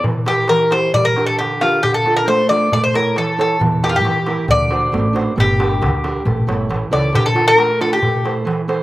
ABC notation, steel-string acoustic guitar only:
X:1
M:2/4
L:1/8
Q:1/4=135
K:Dm
V:1 name="Steel-string acoustic guitar"
E, [EGB] E, [EGB] | G, [DGB] D, [DGB] | D, [DFA] A, [DFA] | A, [EA^c] E, [EAc] |
E, [EGB] E, [EGB] | D, [D^Fc] A, [DFc] | G, [DGB] D, [DGB] | A, [EA^c] E, [EAc] |
D, [DF] A, [DFA] | A, [EAc] E, [EAc] |]